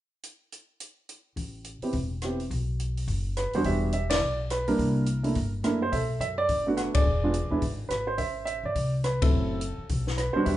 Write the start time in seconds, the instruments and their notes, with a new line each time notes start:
0.23 closed hi-hat
0.52 closed hi-hat
0.80 closed hi-hat
1.09 closed hi-hat
1.36 upright bass A1, kick, open hi-hat
1.64 closed hi-hat
1.81 grand piano B3 C4 E4 G4, muted upright bass stroke, open hi-hat
1.93 upright bass E1, kick, open hi-hat
2.22 grand piano B3 C4 E4 G4, cross-stick, closed hi-hat
2.40 open hi-hat
2.50 upright bass B1, kick, open hi-hat
2.80 closed hi-hat
2.97 open hi-hat
3.07 upright bass F#1, kick, open hi-hat
3.37 grand piano B4, cross-stick, closed hi-hat
3.53 grand piano E2 G3 B3 D4 F#4 C5, muted upright bass stroke, open hi-hat
3.64 upright bass E1, grand piano G4 E5, kick, open hi-hat
3.92 grand piano E5, closed hi-hat
4.10 grand piano D5, snare, ride
4.20 upright bass B1
4.50 grand piano B4, cross-stick, closed hi-hat
4.67 grand piano G3 A#3 D4 E4 A#4, open hi-hat
4.78 upright bass C2, kick, open hi-hat
5.06 closed hi-hat
5.23 grand piano A3 A#3 D4 E4, open hi-hat
5.35 upright bass G1, kick, open hi-hat
5.63 upright bass F#2, grand piano A3 A#3 D4 E4 A#4, cross-stick, closed hi-hat
5.82 grand piano C5
5.92 upright bass B1, grand piano A4 E5, kick, open hi-hat
6.20 upright bass F#2, grand piano E5, closed hi-hat
6.38 grand piano D5
6.49 upright bass F#1, kick, open hi-hat
6.67 grand piano A3 B3 D4 F#4
6.77 grand piano F#5, cross-stick, closed hi-hat
6.94 grand piano G#4 D5, muted upright bass stroke, kick, ride
7.04 upright bass E1
7.23 grand piano G#3 B3 D4 F4
7.34 closed hi-hat
7.42 upright bass B1
7.50 upright bass D#2, grand piano G#3 B3 D4 E4
7.62 upright bass G#1, kick, open hi-hat
7.89 upright bass G#1, grand piano B4, cross-stick, closed hi-hat
8.07 grand piano C5
8.18 upright bass A1, grand piano C5 E5, kick, open hi-hat
8.45 grand piano E5, closed hi-hat
8.63 upright bass G#1, grand piano D5
8.75 upright bass C2, kick, open hi-hat
9.04 grand piano B4, cross-stick, closed hi-hat
9.22 grand piano F#3 A3 C4 E4 A4, kick, ride
9.31 upright bass F#1
9.61 closed hi-hat
9.78 muted upright bass stroke
9.89 upright bass B1, kick, open hi-hat
10.07 snare
10.18 grand piano B4, cross-stick, closed hi-hat
10.33 grand piano G3 B3 D4 F#4 C5, muted upright bass stroke
10.45 upright bass E2, grand piano G4 E5, kick, open hi-hat